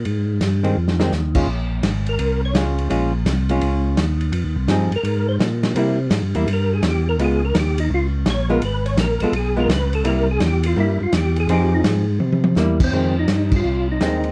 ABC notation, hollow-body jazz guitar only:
X:1
M:4/4
L:1/8
Q:"Swing" 1/4=168
K:Fm
V:1 name="Hollow-body jazz guitar"
z3 [E,A,C] z [E,A,C] z [A,DF] | z6 [A,DF]2 | [A,DF] z2 [A,DF]3 z2 | z2 [F,CEA] z4 z |
[G,B,=E] z2 [G,B,E] z4 | [A,_CF] z6 [A,CF] | z3 [A,_CF] z [A,CF] z2 | [G,B,=E] z3 [G,B,E] z3 |
[F,CEA]3 z3 [G,B,=E] z | [E,A,C] z4 z [E,A,C]2 |]